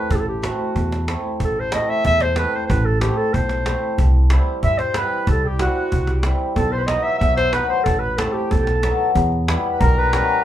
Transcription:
Already playing: B4
0.10 A1 A4, cajon bass
0.16 G4
0.20 A4
0.29 G4
0.42 A3 C4 E4 F#4, cajon slap
0.76 E2, cajon bass
0.92 cajon slap
1.08 A3 C4 E4, cajon slap
1.40 A1, cajon bass
1.45 A4
1.56 cajon slap
1.60 C5
1.72 A3 C4 E4 D#5, cajon slap
1.89 E5, cajon slap
2.05 E2 E5, cajon bass
2.20 C5, cajon slap
2.36 A3 C4 E4 B4, cajon slap
2.55 C5
2.66 A1 B4 C5, cajon bass
2.85 A4
3.01 A3 C4 E4 G4, cajon slap
3.17 A4
3.33 B1 C5, cajon bass
3.49 cajon slap
3.66 A3 C4 E4, cajon slap
3.98 C2, cajon bass
4.14 cajon slap
4.30 G3 C4 E4, cajon slap
4.46 cajon slap
4.63 G2 E5, cajon bass
4.79 C5, cajon slap
4.94 G3 C4 E4 B4, cajon slap
5.27 C2 A4, cajon bass
5.45 G4
5.59 G3 C4 E4 F#4, cajon slap
5.76 cajon slap
5.92 C2, cajon bass
6.07 G4, cajon slap
6.23 G3 C4 E4, cajon slap
6.39 cajon slap
6.56 B1 A4, cajon bass
6.72 C5, cajon slap
6.77 B4 C5
6.87 F#3 B3 D#4 D#5, cajon slap
7.03 E5
7.18 B1 E5, cajon bass
7.37 C5, cajon slap
7.51 F#3 B3 D#4 B4 C5, cajon slap
7.69 C5
7.83 A1 A4, cajon bass
7.99 B4, cajon slap
8.16 A3 C4 E4 A4 B4, cajon slap
8.33 G4
8.51 B1 A4, cajon bass
8.57 G4
8.62 A4
8.67 cajon slap
8.83 F#3 B3 D#4, cajon slap
9.15 E2, cajon bass
9.32 cajon slap
9.48 G3 B3 E4, cajon slap
9.72 B4
9.80 B1 A#4, cajon bass
9.99 B4
10.13 G3 B3 C#4 B4, cajon slap
10.30 cajon slap

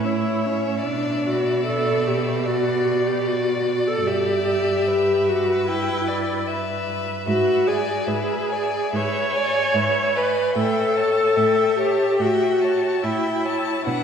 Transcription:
Already playing: A2
0.03 E4 C#5 E5
0.46 C#4
0.84 B2 D4 D5
1.26 F#4
1.65 A4
2.07 G4
2.46 F#4 D5
3.07 G4
3.27 F#4 D5
3.87 A4
4.06 G2 G4 E5
4.88 B4
5.29 F#4
5.68 E4 G5
6.08 D5
6.47 B4 E5
7.26 G#2 F#4 B4 E5
7.67 G#4 D5 G#5
8.07 G#2 B4 E5
8.49 D5 G#5
8.91 G#2 B4 C#5 E5
9.33 D5 G#5
9.74 G#2 B4 E5
10.15 B4 D5 G#5
10.55 A2 A4 E5 G5
10.95 C#5 A5
11.36 A2 E5 G5
11.77 G4 C#5 A5
12.18 A2 F#4 E5 G5
12.62 C#5 A5
13.03 A2 E4 E5 G5
13.45 C#5 A5
13.85 B2 D4 B4 F#5

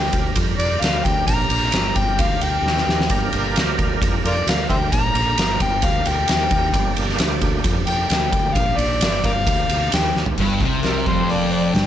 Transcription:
Already playing: D2 D4 G4 A#4 G5
0.13 D2, kick, ride
0.36 F2, kick, ride
0.58 F2 D5, ride
0.81 D2 F5, snare, ride
1.05 D2 G5, kick, ride
1.27 A#1 A#5, kick, ride
1.50 A#1, ride
1.63 snare
1.72 G1, snare, ride
1.96 G1 G5, kick, ride
2.19 D2 F5, kick, ride
2.41 D2 G5, ride
2.62 D#2
2.66 snare
2.78 snare
2.87 D#2, snare
3.01 snare
3.10 G1 A#3 D4 G4 A#4, kick, ride
3.33 G1, ride
3.56 D2, snare, ride
3.79 D2, kick, ride
4.01 F2, kick, ride
4.24 F2 F4 A#4 D5, ride
4.46 D2 F5, snare, ride
4.69 D2 C5 E5 G5, kick, ride
4.92 A#1 A#5, kick, ride
5.14 A#1, ride
5.38 G1, snare, ride
5.60 G1 G5, kick, ride
5.82 D2 F5, kick, ride
6.05 D2 G5, ride
6.28 D#2, snare, ride
6.51 D#2, kick, ride
6.72 G1 A#3 D4 G4, kick, ride
6.97 G1, ride
7.09 snare
7.18 D2, snare, ride
7.41 D2, kick, ride
7.64 F2, kick, ride
7.87 F2 G5, ride
8.09 D2 G5, snare, ride
8.33 D2, kick, ride
8.54 A#1 F5, kick, ride
8.77 A#1 D5, ride
9.01 G1, snare, ride
9.24 G1 A#4 D5 F5, kick, ride
9.47 D2, kick, ride
9.69 D2, ride
9.92 D#2 G5, snare, ride
10.16 D#2, snare
10.26 floor tom
10.38 G1 G2, kick, crash
10.60 C2 C3, kick, open hi-hat
10.82 G3 A#4, snare, open hi-hat
11.05 F1 F2 G3 C5, kick, open hi-hat
11.29 A#3 D5, open hi-hat
11.50 C4 D5, open hi-hat
11.73 G1 G2 D4 G5, snare, open hi-hat

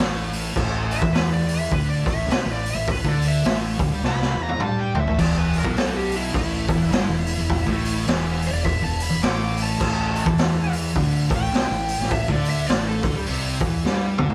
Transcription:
Already playing: A1 A2
0.00 snare
0.33 open hi-hat
0.56 A1 A2, kick, crash
0.91 E5, open hi-hat
1.01 E2 E3, kick
1.13 B4, snare, open hi-hat
1.33 D5
1.48 open hi-hat
1.54 E5
1.72 D2 D3 B4, kick, open hi-hat
1.90 D5
2.06 A1 A2, kick, open hi-hat
2.10 E5
2.28 C2 C3 B4, snare, open hi-hat
2.45 A1 A2
2.51 D5
2.66 open hi-hat
2.71 A1 E5
2.75 A2
2.88 B4, kick, open hi-hat
3.04 D2 D3, kick
3.09 D5
3.21 open hi-hat
3.28 E5
3.44 A1 A2, snare, open hi-hat
3.79 D2 D3, kick, open hi-hat
3.90 G2 G3
4.01 C2 C3, snare
4.06 B5
4.22 snare
4.36 E2 E3
4.43 A#5
4.49 high tom
4.59 G2 G3 A5, mid tom
4.80 G5
4.94 D2 D3, floor tom
5.00 E5
5.06 A1 A2, floor tom
5.18 E1 E2 D5, kick, open hi-hat, crash
5.38 B4
5.53 A#4, open hi-hat
5.64 B1 B2, kick
5.76 A4, snare, open hi-hat
5.96 G4
6.11 open hi-hat
6.16 E4
6.33 A1 A2 E4, kick, open hi-hat
6.68 E1 E2, kick, open hi-hat
6.90 G1 G2, snare, open hi-hat
7.08 E1 E2
7.26 open hi-hat
7.37 E1 E2
7.50 kick, open hi-hat
7.66 A1 A2, kick
7.85 open hi-hat
8.06 E1 E2, snare, open hi-hat
8.42 open hi-hat
8.47 D5
8.52 E1 E2
8.64 E5, kick, open hi-hat
8.81 E1 E2 A5
9.00 B5, open hi-hat
9.08 E1 E2
9.21 A1 A2 D6, snare, open hi-hat
9.57 open hi-hat
9.62 A5
9.80 A1 A2, kick, crash
10.15 open hi-hat
10.26 E2 E3, kick
10.38 snare, open hi-hat
10.73 open hi-hat
10.96 D2 D3, kick, open hi-hat
11.30 A1 A2, kick, open hi-hat
11.36 G5
11.53 C2 C3, snare, open hi-hat
11.70 A1 A2
11.88 open hi-hat
11.99 A1 A2, snare
12.10 E5, kick, open hi-hat
12.28 D2 D3 D5, kick
12.45 open hi-hat
12.50 E5
12.67 A1 A2 D5, snare, open hi-hat
12.88 A4
13.03 D2 D3, kick, open hi-hat
13.14 G2 G3
13.26 C2 C3, open hi-hat
13.60 E2 E3, kick, open hi-hat
13.84 G2 G3, snare
14.18 D2 D3, mid tom
14.30 A1 A2, floor tom

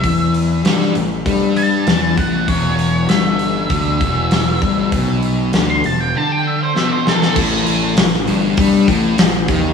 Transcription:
Already playing: E5
0.03 E2 E3, kick, open hi-hat
0.34 open hi-hat
0.64 G2 G3, snare, open hi-hat
0.81 snare
0.94 A1 A2, open hi-hat
1.25 G2 G3, kick, open hi-hat
1.56 A5, open hi-hat
1.87 E2 E3, snare, open hi-hat
2.18 A1 A2 F#5, kick, open hi-hat
2.48 E1 E2 C#5, kick, open hi-hat
2.79 open hi-hat
3.09 G1 G2 E5, snare, open hi-hat
3.39 open hi-hat
3.70 D2 D3, kick, open hi-hat
4.00 E1 E2, kick, open hi-hat
4.31 snare, open hi-hat
4.62 G1 G2, kick, open hi-hat
4.92 B1 B2, kick, open hi-hat
5.23 open hi-hat
5.53 D2 D3, snare, open hi-hat
5.70 C6
5.84 E1 E2 A5, open hi-hat
6.00 G5
6.15 D3 A5
6.32 G5
6.47 E5
6.63 C5
6.75 B2 E5, snare
6.92 C5
7.05 E2 A4, snare
7.22 snare
7.36 A1 A2, kick, crash
7.67 open hi-hat
7.97 A1 A2, snare, open hi-hat
8.13 snare
8.28 G1 G2, open hi-hat
8.57 G2 G3, kick, open hi-hat
8.88 A1 A2, kick, open hi-hat
9.18 A1 A2, snare, open hi-hat
9.48 D#2 D#3, kick, open hi-hat

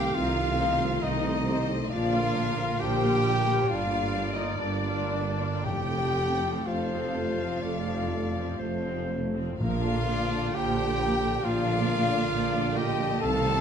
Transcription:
Already playing: D#3 A3 C4 G4 F5 G5
0.15 C2 C3 C4 D#4 F4 F5
0.37 A3 C4
0.58 C4 D#4
0.81 A3 C4
1.02 C2 C3 C4 D#4 D#5
1.24 A3 C4
1.46 C4 D#4 C5
1.69 A3 C4
1.91 A#1 A#2 D3 F3 A#3 D4 F4 D5 F5
2.15 A#3 F4
2.36 F3 D4 A#4
2.59 A#3 F4
2.79 A#1 A#2 F3 D4 G4 C5 G5
3.02 A#3 F4
3.23 F3 D4 A#4
3.46 A#3 F4
3.67 G1 G2 D3 G3 A#3 D4 F4 D5 F5
3.90 A#3 F4
4.13 G3 D4
4.33 A#3 D#4 F4 D#5
4.57 G1 G2 D3 G3 A#3 D4 D5
4.61 D4
4.84 A#3 F4
5.11 G3 D4
5.38 A#3 F4
5.63 F1 F2 C3 A3 G4 A4 G5
5.92 F3 C4
6.18 A3
6.42 F3 C4
6.65 F1 F2 C3 A3 F4 C5 F5
6.91 F3 C4
7.15 A3
7.39 F3 C4
7.62 F1 F2 A3 D5
7.85 F3 C4
8.10 A3
8.35 F3 C4
8.59 F1 F2 A3 C5
8.84 F3 C4
9.09 A3
9.35 F3 C4
9.59 A#1 A#2 D3 F3 A#3 F4 A#4 F5
9.83 D3 D4
10.06 F3 A#3
10.10 D5
10.30 D3 D4
10.53 A#1 A#2 F3 A#3 G4 C5 G5
10.76 D3 D4
10.98 F3 A#3 A#4
11.21 D3 D4
11.43 A#1 A#2 D3 F3 A#3 F4 D5 F5
11.65 D3 D4
11.86 F3 A#3
12.08 D3 D4
12.31 A#1 A#2 F3 A#3 D5
12.54 D3 D4
12.75 F3 A#3 G4 D#5 G5
12.98 D3 D4
13.19 C2 C3 D#3 A3 A4 A5
13.24 F5
13.43 D#3 C4

